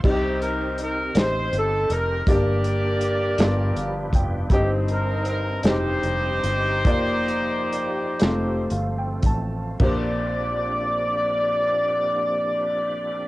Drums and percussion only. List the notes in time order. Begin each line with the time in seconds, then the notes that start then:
0.04 kick, crash
0.42 closed hi-hat
0.78 closed hi-hat
1.15 snare, closed hi-hat
1.53 closed hi-hat
1.90 closed hi-hat
2.27 kick, closed hi-hat
2.64 closed hi-hat
3.01 closed hi-hat
3.38 snare, closed hi-hat
3.77 closed hi-hat
4.13 kick, closed hi-hat
4.50 kick, closed hi-hat
4.88 closed hi-hat
5.25 closed hi-hat
5.63 snare, closed hi-hat
6.03 closed hi-hat
6.43 closed hi-hat
6.85 kick, closed hi-hat
7.28 closed hi-hat
7.72 closed hi-hat
8.19 snare, closed hi-hat
8.70 closed hi-hat
9.23 kick, closed hi-hat
9.80 kick, crash